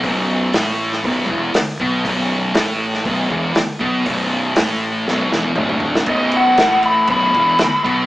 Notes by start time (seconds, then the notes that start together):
0.03 B0 B1 B2, kick, open hi-hat
0.53 A1 A2 A3, snare, open hi-hat
0.92 snare
1.04 B0 B1 B2, kick, open hi-hat
1.29 E1 E2 E3, kick
1.54 muted distorted electric guitar stroke, muted fingered electric bass stroke, snare, open hi-hat
1.80 B1 B2 B3, kick
2.05 B0 B1 B2, kick, open hi-hat
2.55 A1 A2 A3, snare, open hi-hat
2.94 snare
3.05 B0 B1 B2, kick, open hi-hat
3.30 E1 E2 E3, kick
3.55 muted distorted electric guitar stroke, muted fingered electric bass stroke, snare, open hi-hat
3.80 B1 B2 B3, kick
4.05 B0 B1 B2, kick, open hi-hat
4.56 A1 A2 A3, snare, open hi-hat
5.08 B0 B1 B2, snare
5.32 E1 E2 E3, snare
5.56 D1 D2 D3, mid tom
5.69 mid tom
5.80 floor tom
5.95 snare
6.06 B0 B1 B2 D#5, kick, crash
6.32 crash
6.36 F#5
6.57 A1 A2 A3, snare, crash
6.83 B5, crash
7.07 B0 B1 B2, kick, crash
7.12 B5
7.34 E1 E2 E3, kick, crash
7.59 muted fingered electric bass stroke, muted distorted electric guitar stroke, snare, crash
7.85 B1 B2 B3, kick, crash